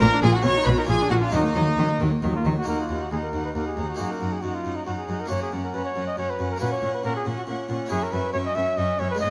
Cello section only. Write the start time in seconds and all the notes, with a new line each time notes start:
0.01 A#2
0.22 A#2
0.44 B2
0.66 B2
0.88 A#2
1.11 A#2
1.33 D#3
1.55 D#3
1.78 D#3
2.01 D#3
2.23 D#3
2.45 D#3
2.67 D#2
2.90 D#2
3.12 D#2
3.33 D#2
3.55 D#2
3.77 D#2
3.99 F#2
4.21 F#2
4.43 F#2
4.65 F#2
4.87 F#2
5.08 F#2
5.30 F#2
5.52 F#2
5.74 F#2
5.96 F#2
6.17 F#2
6.39 F#2
6.61 A#2
6.83 A#2
7.05 A#2
7.26 A#2
7.48 A#2
7.69 A#2
7.91 F#2
8.13 F#2
8.34 F#2
8.56 F#2
8.77 F#2
8.99 F#2
9.21 G#2